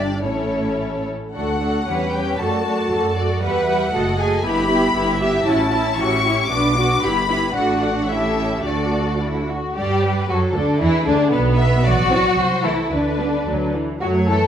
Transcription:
Already playing: double bass section G1, cello section G2, violin section D4 G4 D5, viola section D4
0.24 double bass section A1, cello section A2, viola section A3 C#4, violin section E4 A4 C#5
1.35 double bass section D2, viola section A3 D4, violin section F#4 A4 F#5
1.62 viola section A3 D4, violin section F#4 A4
1.88 double bass section E2, viola section G3 C#4, violin section G4 C#5, cello section B4
2.13 viola section G3 C#4, violin section G4 C#5 G5
2.39 double bass section F#2, viola section A3 F#4, violin section F#4 D5 A5, cello section A4
2.66 viola section A3 F#4, cello section F#4, violin section F#4 D5
2.91 double bass section F#2, viola section A3 F#4, violin section F#4 D5, cello section A4
3.17 viola section A3 F#4, violin section F#4 D5
3.42 double bass section E2, viola section G3 G4, cello section B4, violin section B4 E5 F#5
3.68 viola section G3 G4, violin section B4 E5
3.93 double bass section F#1, viola section A3 F#4, cello section A4, violin section A4 D#5
4.19 viola section A3 F#4, cello section G#4, violin section A4 D#5 G#5
4.44 double bass section G1, viola section B3 E4, violin section G4 E5 B5, cello section G4
4.70 viola section B3 E4, violin section G4 E5
4.95 double bass section G1, viola section B3 E4, cello section E4, violin section G4 E5
5.20 viola section B3 E4, cello section G4, violin section G4 E5
5.46 double bass section A1, viola section C#4 E4, violin section E4 E5 A5, cello section F#4
5.72 viola section C#4 E4, violin section E4 E5, cello section E4
5.98 double bass section A1, viola section C#4 E4, cello section F#4, violin section G4 E5 C#6
6.24 viola section C#4 E4, cello section E4, violin section G4 E5
6.50 double bass section B1, viola section B3 D4, cello section D4, violin section F#4 B4 D6
6.77 viola section B3 D4, cello section F#4, violin section F#4 B4
7.02 double bass section G1, viola section B3 E4, cello section G4, violin section G4 B4 B5
7.29 viola section B3 E4, cello section E4, violin section G4 B4
7.55 double bass section A1, viola section A3 D4, cello section F#4, violin section F#4 D5 F#5
7.82 cello section D4
8.09 viola section A3 C#4, cello section E4, violin section G4 A4 E5
8.64 double bass section D2, viola section A3 D4, cello section F#4, violin section F#4 A4 D5
9.21 violin section E4
9.51 violin section F#4
9.76 double bass section G2, viola section G3, cello section G3, violin section G4 D5
10.03 violin section B4
10.29 double bass section F#2, cello section F#3, viola section F#3, violin section F#4 A4
10.55 double bass section D2, cello section D3, viola section D3, violin section D4
10.80 double bass section E2, cello section E3, viola section E3, violin section E4 G#4
11.06 double bass section D2, cello section D3, viola section D3, violin section D4
11.31 double bass section B1, cello section B2, viola section B3, violin section B3 B4
11.58 violin section E5
11.85 double bass section A1, cello section F#3, violin section F#4 D5
12.11 viola section E3 C4
12.38 double bass section C2, violin section C5
12.64 viola section E3 A3, cello section E3, violin section E4 A4
12.92 double bass section D2, cello section D3, violin section D4 B4
13.20 viola section G3 B3
13.47 double bass section D2, viola section F#3
13.75 viola section E3
14.01 double bass section F#2, viola section F#3 A3, cello section F#3, violin section F#4 C#5
14.29 viola section E3, cello section A3, violin section A4

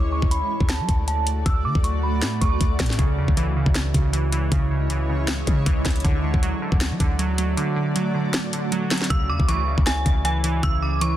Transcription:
Already playing: 808-style bass D2, ambient pad A3 F#4 D5, synth bell D6
0.12 synth bell C#6
0.22 808-style bass D2, kick
0.31 synth bell B5, closed hi-hat
0.60 808-style bass D2, kick
0.69 synth bell A5, finger snap, snare, closed hi-hat
0.80 808-style bass F#3
0.89 808-style bass D2, kick, closed hi-hat
1.08 synth bell A5, closed hi-hat
1.27 closed hi-hat
1.46 808-style bass D2, synth bell E6, kick, closed hi-hat
1.65 808-style bass D3, synth bell D6
1.75 808-style bass D2, kick
1.84 synth bell C#6, closed hi-hat
2.03 synth bell B5
2.22 808-style bass A2, finger snap, snare, closed hi-hat
2.41 808-style bass D2, synth bell C#6, kick, closed hi-hat
2.61 808-style bass D2, kick, closed hi-hat
2.80 808-style bass A2, finger snap, kick, snare, closed hi-hat, open hi-hat
2.86 snare, closed hi-hat
2.93 closed hi-hat
2.98 808-style bass C#2, synth keys C#3, ambient pad G#3 E4 C#5, kick, closed hi-hat
3.18 808-style bass E2, synth keys C#3
3.28 808-style bass C#2, kick
3.37 synth keys E3, closed hi-hat
3.56 synth keys C#3
3.66 808-style bass C#2, kick
3.75 finger snap, snare, closed hi-hat
3.94 808-style bass C#2, synth keys C#3, kick, closed hi-hat
4.13 synth keys E3, closed hi-hat
4.32 synth keys E3, closed hi-hat
4.52 808-style bass C#2, synth keys C#3, kick, closed hi-hat
4.71 synth keys C#3
4.90 synth keys E3, closed hi-hat
5.09 synth keys C#3
5.28 finger snap, snare, closed hi-hat
5.47 synth keys C#3, 808-style bass C#3, kick, closed hi-hat
5.66 808-style bass C#2, synth keys E3, kick, closed hi-hat
5.85 808-style bass C#2, synth keys E3, finger snap, kick, snare, closed hi-hat
5.91 closed hi-hat
5.96 closed hi-hat
6.00 closed hi-hat
6.04 808-style bass D2, synth keys D3, ambient pad A3 F#4 D5, kick, closed hi-hat
6.24 synth keys D3
6.34 808-style bass D2, kick
6.43 synth keys F#3, closed hi-hat
6.62 synth keys D3
6.72 808-style bass D2, kick
6.81 finger snap, snare, closed hi-hat
6.91 808-style bass F#3
7.00 808-style bass D2, synth keys D3, kick, closed hi-hat
7.19 synth keys F#3, closed hi-hat
7.38 synth keys F#3, closed hi-hat
7.57 synth keys D3, closed hi-hat
7.76 synth keys D3
7.96 synth keys F#3, closed hi-hat
8.14 synth keys D3
8.34 finger snap, snare, closed hi-hat
8.53 synth keys D3, closed hi-hat
8.72 synth keys F#3, closed hi-hat
8.91 synth keys F#3, finger snap, snare, closed hi-hat, open hi-hat
8.98 snare, closed hi-hat
9.04 closed hi-hat
9.10 808-style bass C#2, synth keys C#3, ambient pad G#3 E4 C#5, synth bell E6, kick, closed hi-hat
9.29 808-style bass E2, synth keys C#3, synth bell D6
9.40 808-style bass C#2, kick
9.48 synth keys E3, synth bell C#6, closed hi-hat
9.68 synth keys C#3
9.78 808-style bass C#2, kick
9.86 synth bell G#5, finger snap, snare, closed hi-hat
10.06 808-style bass C#2, synth keys C#3, kick, closed hi-hat
10.25 synth keys E3, synth bell G#5, closed hi-hat
10.44 synth keys E3, closed hi-hat
10.63 808-style bass C#2, synth keys C#3, synth bell E6, kick, closed hi-hat
10.82 synth keys C#3, synth bell D6
11.01 synth keys E3, synth bell C#6, closed hi-hat

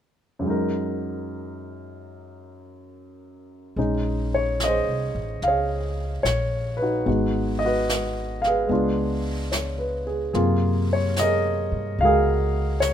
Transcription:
0.39 grand piano F#2 F#3
0.44 grand piano G#3 D#4
0.50 grand piano A#4
3.76 upright bass A#1, grand piano G#3 C#4 D#4, brush sweep
4.34 grand piano C#5
4.60 grand piano D#5, snare, hi-hat pedal
4.66 grand piano G#4 C5
4.87 upright bass C2
5.15 upright bass A1
5.42 upright bass C#2, grand piano F5, brush sweep, snare
5.48 grand piano G#4 C#5
6.23 upright bass A#1, grand piano C#5, snare, hi-hat pedal
6.77 grand piano B4
6.82 grand piano D#4 F#4
7.06 upright bass G#1, grand piano G#3 B3 D#4 F#4, brush sweep
7.59 grand piano D#5
7.65 grand piano F#4 B4
7.89 snare, hi-hat pedal
8.42 grand piano F5, snare
8.47 grand piano G#4 B4
8.67 upright bass C#2, grand piano G#3 B3, brush sweep
8.71 grand piano D4 F4
9.52 grand piano C#5, snare, hi-hat pedal
9.78 grand piano B4
10.07 grand piano G#4
10.33 upright bass F#2, grand piano C3 A#3 F4 G#4, brush sweep, snare
10.93 grand piano C#5
11.16 grand piano D#5, snare, hi-hat pedal
11.21 grand piano G#4 A#4
11.72 upright bass G2
11.98 upright bass C#2, grand piano G#3 F#4 F5, brush sweep
12.05 grand piano G#4 A#4
12.80 grand piano C#5, snare, hi-hat pedal

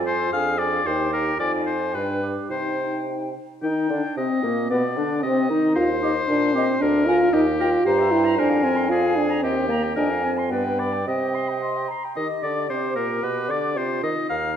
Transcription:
Already playing: bassoon F2, clarinet F4
0.06 french horn F4, oboe C5, flute G#5
0.32 bassoon F2, french horn D4, clarinet G#4, oboe F5, flute G#5
0.59 french horn D4, oboe D5, flute G#5
0.85 bassoon D#2, french horn D#4, clarinet G4, oboe C5, flute G5
1.11 french horn D#4, oboe A#4, flute G5
1.38 bassoon F2, french horn D#4, clarinet F4, oboe D5, flute G#5
1.67 oboe C5
1.93 bassoon G2, french horn D4, clarinet D4, oboe B4, flute G5
2.22 clarinet G4
2.49 bassoon C3, french horn D#4, clarinet D#4, oboe C5, flute G5
3.62 bassoon D#3, french horn D#4, flute D#4, clarinet D#4, oboe G5
3.90 bassoon D3, french horn D4, flute D4, clarinet D4
4.17 bassoon C3, french horn C4, clarinet C4, flute C4, oboe D#5
4.43 bassoon A#2, clarinet A#3, french horn A#3, flute A#4
4.69 bassoon B2, clarinet B3, french horn B3, flute B4, oboe D5
4.96 bassoon D3, clarinet D4, flute D4, french horn D4
5.21 bassoon C3, french horn C4, clarinet C4, flute C4, oboe D#5
5.50 bassoon D#3, clarinet D#4, french horn D#4, flute D#4
5.76 bassoon D#2, french horn F4, oboe C5
6.02 french horn D#4, clarinet G4, flute D#5
6.28 bassoon A#2, french horn D4
6.54 french horn C4, clarinet G4, flute D#5
6.80 bassoon D2, french horn D4, oboe A#4
7.06 french horn F4, clarinet A#4, flute G#5
7.33 bassoon D#2, french horn D#4, oboe G4
7.60 french horn F4, clarinet A#4, flute G5
7.85 bassoon G2, french horn G4, oboe C5, clarinet C5, flute A#5
7.99 clarinet E5
8.11 french horn E4, clarinet G5
8.25 clarinet A#5
8.36 bassoon F2, french horn D4, oboe A#4, clarinet C5, flute G#5
8.50 clarinet F5
8.63 french horn C4, clarinet G#5
8.76 clarinet C6
8.90 french horn F4, oboe G#4, clarinet D5
9.03 clarinet F5
9.16 french horn D4, clarinet G#5
9.30 clarinet A#5
9.43 bassoon D#2, french horn C4, oboe G4, clarinet D#5, flute G5
9.57 clarinet G5
9.69 french horn A#3, clarinet A#5
9.83 clarinet G5
9.96 bassoon F2, french horn D4, oboe A#4, clarinet D#5, flute G#5
10.11 clarinet F5
10.23 french horn C4, clarinet G#5
10.38 clarinet C6
10.50 bassoon G2, french horn B3, oboe B4, clarinet D5, flute G5
10.65 clarinet G5
10.79 oboe D5, clarinet B5
10.93 clarinet G5
11.05 bassoon C3, french horn C4, clarinet D#5, oboe D#5
11.20 clarinet G5
11.35 clarinet C6
11.49 clarinet G5
11.61 clarinet D#5, flute C6
11.77 clarinet G5
11.88 flute A#5, clarinet C6
12.05 clarinet G5
12.16 bassoon D#3, french horn D#4, clarinet G4, oboe D#5, flute D#5
12.42 bassoon D3, french horn D4, oboe D5, flute D5
12.69 bassoon C3, french horn C4, oboe C5, flute C5
12.96 bassoon A#2, french horn A#3, oboe A#4, flute A#4
13.22 bassoon B2, french horn B3, flute B4, oboe B4
13.48 bassoon D3, french horn D4, flute D5, oboe D5
13.77 bassoon C3, french horn C4, clarinet F4, oboe C5, flute C5
14.03 bassoon D#3, french horn D#4, flute D#5, oboe D#5
14.29 bassoon D#2, clarinet D#4, flute F5, oboe F5

